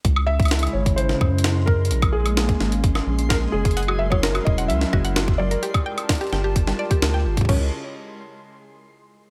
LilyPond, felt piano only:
\new Staff \with { instrumentName = "Felt piano" } { \time 4/4 \key cis \minor \tempo 4 = 129 r8 e''4 cis''8 bis'4. ais'8~ | ais'8 gis'4. r4 ais'8 gis'8~ | gis'8 e''16 cis''8. dis''8 e''4. d''8~ | d''2. r4 |
cis''8 r2. r8 | }